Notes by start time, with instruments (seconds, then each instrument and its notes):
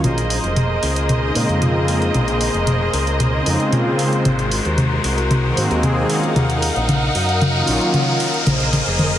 0.04 fingered electric bass A#1, string section A#3 G#4 A#4 C5 D#5, closed hi-hat, mid tom, riser
0.18 closed hi-hat
0.30 open hi-hat
0.44 fingered electric bass F1, closed hi-hat
0.56 closed hi-hat, mid tom
0.83 fingered electric bass C#2, open hi-hat
0.96 closed hi-hat
1.09 closed hi-hat, mid tom
1.22 analog synth pad C#3 G#3 A#3 C4 D#4
1.35 fingered electric bass A#2, open hi-hat
1.49 fingered electric bass F2, analog synth pad C#3 G#3 A#3 C4 F4, closed hi-hat
1.62 closed hi-hat, mid tom
1.88 analog synth pad C#3 G#3 A#3 C4 D#4, open hi-hat
2.02 closed hi-hat
2.14 fingered electric bass A#1, closed hi-hat, mid tom
2.28 closed hi-hat
2.41 open hi-hat
2.54 fingered electric bass F1, closed hi-hat
2.67 closed hi-hat, mid tom
2.93 fingered electric bass C#2, open hi-hat
3.07 closed hi-hat
3.20 closed hi-hat, mid tom
3.33 analog synth pad C#3 G#3 A#3 C4 D#4
3.46 fingered electric bass F2, open hi-hat
3.59 analog synth pad C#3 G#3 A#3 C4 F4, closed hi-hat
3.73 closed hi-hat, mid tom
3.99 analog synth pad C#3 G#3 A#3 C4 D#4, open hi-hat
4.13 closed hi-hat
4.24 fingered electric bass G#1, string section G#3 F#4 A#4, closed hi-hat, mid tom
4.39 closed hi-hat
4.51 open hi-hat
4.65 fingered electric bass D#2, closed hi-hat
4.78 closed hi-hat, mid tom
5.04 fingered electric bass C2, open hi-hat
5.18 closed hi-hat
5.31 closed hi-hat, mid tom
5.43 analog synth pad D#3 G#3 A#3 C4 F#4
5.57 fingered electric bass G#2, open hi-hat
5.70 fingered electric bass D#2, analog synth pad D#3 G#3 A#3 C4 G#4, closed hi-hat
5.83 closed hi-hat, mid tom
6.09 analog synth pad D#3 F#3 A#3 C#4 F4, string section D#4 A#4 F5 F#5, open hi-hat
6.23 closed hi-hat
6.36 fingered electric bass D#2, closed hi-hat, mid tom
6.50 closed hi-hat
6.62 open hi-hat
6.76 fingered electric bass A#1, closed hi-hat
6.89 closed hi-hat, mid tom
7.15 fingered electric bass F#2, open hi-hat
7.29 closed hi-hat
7.42 closed hi-hat, mid tom
7.55 analog synth pad D#3 F#3 A#3 C#4 F4
7.67 fingered electric bass A#1, open hi-hat
7.81 analog synth pad D#3 F#3 A#3 C#4 F4, closed hi-hat
7.94 closed hi-hat, mid tom
8.20 open hi-hat
8.34 closed hi-hat
8.47 fingered electric bass A#1, string section A#3 G#4 C5 D#5, closed hi-hat, mid tom
8.60 closed hi-hat
8.73 open hi-hat, mid tom
8.87 fingered electric bass F1, closed hi-hat
8.99 closed hi-hat, mid tom